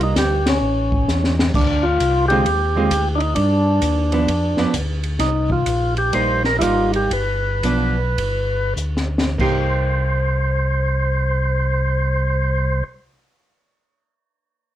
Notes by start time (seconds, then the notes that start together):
Already playing: C2 G3 A#3 D#4
0.01 D#4, ride
0.16 D2 G4, kick, snare, hi-hat pedal, ride
0.46 C#4, snare, ride
0.61 A1
0.92 kick
1.07 E2, snare, hi-hat pedal
1.24 snare
1.39 snare
1.54 D2 D4, kick, crash
1.83 F4
2.00 C2, kick, hi-hat pedal, ride
2.28 D3 G#3 C4 F4 G4, ride
2.45 D#2, kick, ride
2.76 D3 G#3 C4 F4
2.91 D2, kick, hi-hat pedal, ride
3.16 D4 D#4
3.21 ride
3.36 G2 D4, kick, ride
3.82 D#2, kick, hi-hat pedal, ride
4.12 F3 B3 D4, ride
4.28 F2, kick, ride
4.57 F2 F3 B3 D4, snare
4.74 D2, kick, hi-hat pedal, ride
5.03 ride
5.19 C2 D#4, kick, snare, ride
5.50 F4, kick
5.66 A#1, kick, hi-hat pedal, ride
5.97 G4, ride
6.12 A#1 G3 A#3 D#4 C5, kick, ride
6.44 A#4, snare
6.59 G#1 G3 A#3 D#4 E4 F4, kick, hi-hat pedal, ride
6.93 G4, ride
7.10 G1 B4, kick, ride
7.63 B1 F3 B3 D4, kick, hi-hat pedal, ride
8.18 G1, kick, ride
8.76 D2, hi-hat pedal
8.97 snare
9.18 snare
9.38 C2 A#3 D#4 G4 C5, kick, crash